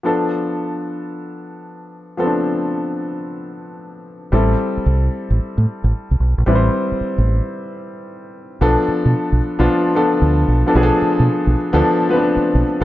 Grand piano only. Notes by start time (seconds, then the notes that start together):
0.03 F3 B3 D4 A4
2.17 F3 B3 C4 A4
2.26 D4
4.32 G3 C4 E4 A4
6.46 G3 C4 E4 B4
6.55 C5
8.61 F3 B3 D4 A4
9.59 F3 B3 D4 F4
9.95 F3 B3 D4 A4
10.66 F3 B3 D4 A4
10.75 F3 B3 D4 G#4
10.83 A4
11.73 F3 B3 D4 A4
12.09 F3 B3 C4 B4
12.16 D4
12.81 F3 B3